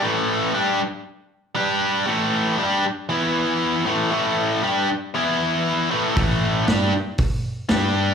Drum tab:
HH |--------|--------|--------|o-o-o-o-|
SD |--------|--------|--------|--o---o-|
BD |--------|--------|--------|o---o---|